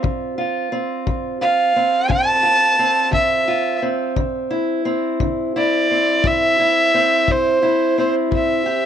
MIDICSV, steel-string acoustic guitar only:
0, 0, Header, 1, 2, 480
1, 0, Start_track
1, 0, Tempo, 689655
1, 28, Time_signature, 12, 3, 24, 8
1, 6164, End_track
2, 0, Start_track
2, 0, Title_t, "Steel-string acoustic guitar"
2, 0, Program_c, 0, 25
2, 0, Note_on_c, 0, 60, 59
2, 0, Note_on_c, 0, 65, 66
2, 19, Note_on_c, 0, 50, 70
2, 260, Note_off_c, 0, 65, 0
2, 263, Note_on_c, 0, 65, 67
2, 454, Note_off_c, 0, 50, 0
2, 498, Note_off_c, 0, 60, 0
2, 501, Note_on_c, 0, 60, 61
2, 743, Note_on_c, 0, 50, 66
2, 980, Note_off_c, 0, 65, 0
2, 982, Note_on_c, 0, 65, 66
2, 1175, Note_off_c, 0, 50, 0
2, 1223, Note_off_c, 0, 60, 0
2, 1226, Note_on_c, 0, 60, 55
2, 1451, Note_on_c, 0, 50, 81
2, 1682, Note_off_c, 0, 65, 0
2, 1690, Note_on_c, 0, 65, 64
2, 1889, Note_off_c, 0, 50, 0
2, 1939, Note_off_c, 0, 60, 0
2, 1942, Note_on_c, 0, 60, 59
2, 2165, Note_on_c, 0, 50, 71
2, 2411, Note_off_c, 0, 65, 0
2, 2420, Note_on_c, 0, 65, 64
2, 2605, Note_off_c, 0, 50, 0
2, 2657, Note_off_c, 0, 60, 0
2, 2660, Note_on_c, 0, 60, 51
2, 2872, Note_off_c, 0, 65, 0
2, 2900, Note_on_c, 0, 50, 77
2, 3136, Note_on_c, 0, 64, 64
2, 3333, Note_off_c, 0, 50, 0
2, 3374, Note_off_c, 0, 60, 0
2, 3377, Note_on_c, 0, 60, 60
2, 3622, Note_on_c, 0, 50, 73
2, 3866, Note_off_c, 0, 64, 0
2, 3869, Note_on_c, 0, 64, 69
2, 4055, Note_off_c, 0, 50, 0
2, 4111, Note_off_c, 0, 60, 0
2, 4114, Note_on_c, 0, 60, 55
2, 4350, Note_on_c, 0, 50, 81
2, 4588, Note_off_c, 0, 64, 0
2, 4591, Note_on_c, 0, 64, 62
2, 4779, Note_off_c, 0, 50, 0
2, 4824, Note_off_c, 0, 60, 0
2, 4832, Note_on_c, 0, 60, 62
2, 5068, Note_on_c, 0, 50, 72
2, 5304, Note_off_c, 0, 64, 0
2, 5307, Note_on_c, 0, 64, 68
2, 5500, Note_off_c, 0, 50, 0
2, 5544, Note_off_c, 0, 60, 0
2, 5553, Note_on_c, 0, 60, 59
2, 5785, Note_on_c, 0, 45, 65
2, 6023, Note_off_c, 0, 64, 0
2, 6026, Note_on_c, 0, 67, 66
2, 6164, Note_off_c, 0, 45, 0
2, 6164, Note_off_c, 0, 60, 0
2, 6164, Note_off_c, 0, 67, 0
2, 6164, End_track
0, 0, End_of_file